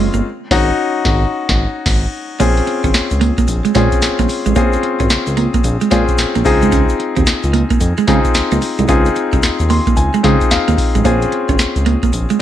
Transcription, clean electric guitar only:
0.14 A#3
2.40 A#3
2.67 muted clean electric guitar stroke
2.84 C#4
2.94 muted clean electric guitar stroke
3.21 A#3
3.38 A#3
3.48 muted clean electric guitar stroke
3.65 G#3
3.75 G#3
4.19 A#3
4.29 muted clean electric guitar stroke
4.46 G#3
4.56 A#3
4.83 muted clean electric guitar stroke
5.00 C#4
5.10 muted clean electric guitar stroke
5.37 A#3
5.54 A#3
5.64 muted clean electric guitar stroke
5.81 G#3
5.91 G#3
6.35 A#3
6.45 muted clean electric guitar stroke
6.62 G#3
6.72 C#4
6.99 muted clean electric guitar stroke
7.16 C4
7.26 muted clean electric guitar stroke
7.53 A#3
7.71 A#3
7.81 muted clean electric guitar stroke
7.98 G#3
8.08 G#3
8.52 A#3
8.62 muted clean electric guitar stroke
8.79 G#3
8.89 C#4
9.16 muted clean electric guitar stroke
9.33 C4
9.43 muted clean electric guitar stroke
9.70 A#3
9.87 A#3
9.97 muted clean electric guitar stroke
10.14 G#3
10.24 G#3
10.68 A#3
10.78 muted clean electric guitar stroke
10.95 G#3
11.05 A#3
11.32 muted clean electric guitar stroke
11.49 C#4
11.59 muted clean electric guitar stroke
11.86 A#3
12.03 A#3
12.13 muted clean electric guitar stroke
12.30 G#3

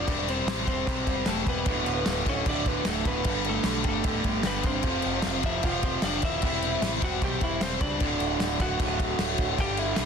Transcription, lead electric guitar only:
Already playing: D4 D5
0.30 C4 C5
0.68 C4 C5
1.28 A3 A4
1.48 B3 B4
2.29 C#4 C#5
2.48 D4 D5
2.68 B3 B4
2.87 A3 A4
3.07 B3 B4
3.49 A3 A4
3.88 A3 A4
4.47 B3 B4
4.66 C4 C5
5.46 E4 E5
5.64 F4 F5
5.84 C4 C5
6.04 D4 D5
6.25 E4 E5
7.04 F#4 F#5
7.23 G4 G5
7.43 E4 E5
7.63 C4 C5
7.82 D4 D5
8.61 F#4 F#5
9.60 G4 G5
9.79 E4 E5

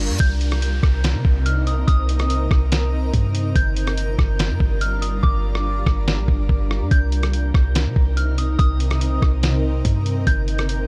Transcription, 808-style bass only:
Already playing: G1
0.09 G2
0.20 C2
0.83 C2
1.14 C3
1.25 C2
1.88 C2
2.51 C2
3.14 G2
3.56 G1
4.19 G1
4.50 G2
4.60 G1
5.23 G1
5.86 G1
6.18 A#1
6.28 G1
6.49 G1
6.81 G2
6.91 C2
7.54 C2
7.86 C3
7.96 C2
8.59 C2
9.22 C2
9.85 G2
10.27 G1

